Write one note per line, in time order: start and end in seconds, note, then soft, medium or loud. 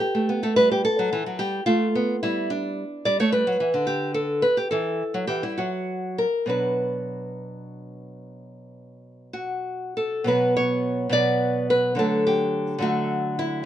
0.00 0.40 G4 medium
0.15 0.28 A3 medium
0.29 0.42 B3 medium
0.43 0.56 A3 medium
0.43 0.56 A4 medium
0.56 0.87 G3 medium
0.56 0.70 B4 loud
0.72 0.84 G4 medium
0.85 1.37 A4 medium
0.99 1.11 F#3 medium
1.13 1.25 E3 medium
1.26 1.39 F#3 medium
1.39 1.59 G3 medium
1.39 1.65 G4 medium
1.66 1.87 A3 medium
1.66 2.20 F4 medium
1.95 2.15 B3 medium
2.23 2.83 G3 medium
2.23 2.49 E4 medium
2.50 3.03 D4 medium
3.05 3.19 G3 medium
3.05 3.19 D5 medium
3.20 3.32 A3 medium
3.20 3.32 C#5 medium
3.32 3.46 G3 medium
3.32 3.84 B4 medium
3.47 3.59 F#3 medium
3.60 3.73 E3 medium
3.74 4.44 D3 medium
3.87 4.13 G4 medium
4.14 4.41 A4 medium
4.42 4.56 B4 medium
4.57 4.70 G4 medium
4.71 5.02 E3 medium
4.71 5.26 A4 medium
5.14 5.27 F#3 medium
5.27 5.42 E3 medium
5.27 5.42 G4 medium
5.43 5.57 G3 medium
5.43 5.58 E4 medium
5.58 6.25 F#3 medium
5.58 6.16 F#4 medium
6.18 6.49 A#4 medium
6.46 10.23 B2 soft
6.46 10.23 F#3 soft
6.46 10.24 D4 soft
6.46 9.94 B4 medium
9.33 9.95 F#4 medium
9.97 10.27 A4 medium
10.24 11.08 B2 medium
10.24 11.10 F#3 soft
10.24 11.11 B3 soft
10.24 10.56 B4 medium
10.57 11.11 C#5 medium
11.09 11.94 B2 medium
11.09 11.95 F#3 soft
11.09 11.95 B3 soft
11.09 11.68 D5 medium
11.70 11.98 B4 medium
11.95 12.77 D3 medium
11.95 12.78 F#3 soft
11.95 12.80 A3 soft
11.99 12.26 A4 medium
12.27 12.81 G4 medium
12.78 13.63 D3 medium
12.78 13.64 F#3 soft
12.78 13.65 A3 soft
12.78 13.37 F#4 medium
13.39 13.65 E4 medium